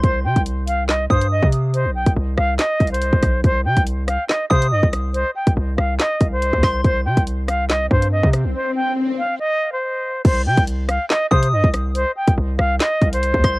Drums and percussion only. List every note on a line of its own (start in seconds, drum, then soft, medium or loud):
0.04 kick loud
0.04 closed hi-hat medium
0.36 kick loud
0.36 closed hi-hat medium
0.46 closed hi-hat medium
0.68 closed hi-hat medium
0.89 snare loud
0.89 clap medium
1.10 kick loud
1.21 closed hi-hat medium
1.43 kick loud
1.52 closed hi-hat medium
1.74 closed hi-hat medium
2.06 kick medium
2.06 closed hi-hat medium
2.38 cross-stick loud
2.59 snare loud
2.59 clap loud
2.59 closed hi-hat medium
2.80 kick loud
2.80 closed hi-hat soft
2.87 closed hi-hat medium
2.94 closed hi-hat medium
3.02 closed hi-hat medium
3.13 kick loud
3.23 kick medium
3.23 cross-stick medium
3.23 closed hi-hat medium
3.44 kick loud
3.44 closed hi-hat medium
3.77 kick medium
3.77 closed hi-hat medium
3.87 closed hi-hat medium
4.08 cross-stick loud
4.08 closed hi-hat medium
4.29 snare loud
4.29 clap medium
4.50 kick loud
4.62 closed hi-hat medium
4.83 kick loud
4.93 cross-stick loud
4.93 closed hi-hat medium
5.14 closed hi-hat medium
5.47 kick loud
5.47 closed hi-hat medium
5.78 cross-stick loud
5.99 snare loud
5.99 clap medium
5.99 closed hi-hat medium
6.21 kick loud
6.21 closed hi-hat medium
6.42 closed hi-hat medium
6.53 kick loud
6.63 kick medium
6.63 cross-stick loud
6.63 snare medium
6.63 open hi-hat medium
6.84 kick loud
6.84 closed hi-hat medium
7.17 kick loud
7.17 closed hi-hat medium
7.27 closed hi-hat medium
7.48 cross-stick loud
7.48 closed hi-hat medium
7.70 snare loud
7.70 clap medium
7.91 kick loud
8.02 closed hi-hat medium
8.23 kick loud
8.33 cross-stick medium
8.33 closed hi-hat medium
10.25 kick loud
10.25 closed hi-hat medium
10.25 crash loud
10.57 kick loud
10.57 closed hi-hat medium
10.67 closed hi-hat medium
10.89 cross-stick loud
10.89 closed hi-hat medium
11.10 snare loud
11.10 clap medium
11.31 kick loud
11.43 closed hi-hat medium
11.64 kick loud
11.74 cross-stick loud
11.74 closed hi-hat medium
11.95 closed hi-hat medium
12.28 kick loud
12.28 closed hi-hat medium
12.59 cross-stick loud
12.80 snare loud
12.80 clap loud
12.80 closed hi-hat medium
13.01 kick loud
13.01 closed hi-hat soft
13.13 closed hi-hat medium
13.23 closed hi-hat medium
13.34 kick loud
13.44 kick medium
13.44 cross-stick loud
13.44 closed hi-hat medium